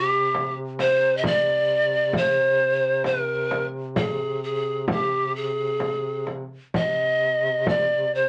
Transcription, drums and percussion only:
0.35 frame drum
0.79 frame drum
1.24 frame drum
2.13 frame drum
3.04 frame drum
3.51 frame drum
3.96 frame drum
4.88 frame drum
5.80 frame drum
6.27 frame drum
6.74 frame drum
7.67 frame drum

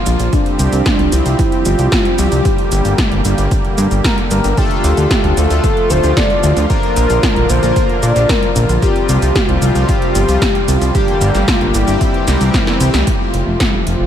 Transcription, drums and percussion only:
0.06 closed hi-hat, shaker
0.20 closed hi-hat, shaker
0.33 kick, closed hi-hat, shaker
0.46 closed hi-hat
0.59 closed hi-hat, shaker
0.73 closed hi-hat, shaker
0.86 kick, snare, closed hi-hat, shaker
0.99 closed hi-hat
1.12 closed hi-hat, shaker
1.26 closed hi-hat, shaker
1.39 kick, closed hi-hat, shaker
1.52 closed hi-hat
1.65 closed hi-hat, shaker
1.79 closed hi-hat, shaker
1.92 kick, snare, closed hi-hat, shaker
2.05 closed hi-hat
2.18 closed hi-hat, shaker
2.32 closed hi-hat, shaker
2.45 kick, closed hi-hat, shaker
2.58 closed hi-hat
2.72 closed hi-hat, shaker
2.85 closed hi-hat, shaker
2.98 kick, snare, closed hi-hat, shaker
3.12 closed hi-hat
3.25 closed hi-hat, shaker
3.38 closed hi-hat, shaker
3.51 kick, closed hi-hat, shaker
3.65 closed hi-hat
3.78 closed hi-hat, shaker
3.91 closed hi-hat, shaker
4.04 kick, snare, closed hi-hat, shaker
4.18 closed hi-hat
4.31 closed hi-hat, shaker
4.44 closed hi-hat, shaker
4.57 kick, closed hi-hat, shaker
4.71 closed hi-hat
4.84 closed hi-hat, shaker
4.97 closed hi-hat, shaker
5.11 kick, snare, closed hi-hat, shaker
5.24 closed hi-hat
5.37 closed hi-hat, shaker
5.50 closed hi-hat, shaker
5.64 kick, closed hi-hat, shaker
5.77 closed hi-hat
5.90 closed hi-hat, shaker
6.04 closed hi-hat, shaker
6.17 kick, snare, closed hi-hat, shaker
6.30 closed hi-hat
6.43 closed hi-hat, shaker
6.57 closed hi-hat, shaker
6.70 kick, closed hi-hat, shaker
6.83 closed hi-hat
6.96 closed hi-hat, shaker
7.10 closed hi-hat, shaker
7.23 kick, snare, closed hi-hat, shaker
7.36 closed hi-hat
7.50 closed hi-hat, shaker
7.63 closed hi-hat, shaker
7.76 kick, closed hi-hat, shaker
7.89 closed hi-hat
8.03 closed hi-hat, shaker
8.16 closed hi-hat, shaker
8.29 kick, snare, closed hi-hat, shaker
8.43 closed hi-hat
8.56 closed hi-hat, shaker
8.69 closed hi-hat, shaker
8.82 kick, closed hi-hat, shaker
8.96 closed hi-hat
9.09 closed hi-hat, shaker
9.22 closed hi-hat, shaker
9.35 kick, snare, closed hi-hat, shaker
9.49 closed hi-hat
9.62 closed hi-hat, shaker
9.75 closed hi-hat, shaker
9.89 kick, closed hi-hat, shaker
10.02 closed hi-hat
10.15 closed hi-hat, shaker
10.29 closed hi-hat, shaker
10.42 kick, snare, closed hi-hat, shaker
10.55 closed hi-hat
10.68 closed hi-hat, shaker
10.82 closed hi-hat, shaker
10.95 kick, closed hi-hat, shaker
11.08 closed hi-hat
11.21 closed hi-hat, shaker
11.35 snare, closed hi-hat, shaker
11.48 kick, snare, closed hi-hat, shaker
11.61 closed hi-hat
11.74 closed hi-hat, shaker
11.88 closed hi-hat, shaker
12.01 kick, closed hi-hat, shaker
12.14 closed hi-hat
12.28 snare, closed hi-hat, shaker
12.41 closed hi-hat, shaker
12.54 kick, snare, closed hi-hat, shaker
12.67 snare, closed hi-hat
12.80 closed hi-hat, shaker
12.94 snare, closed hi-hat, shaker
13.07 kick, closed hi-hat
13.34 closed hi-hat
13.60 kick, snare, closed hi-hat
13.87 closed hi-hat

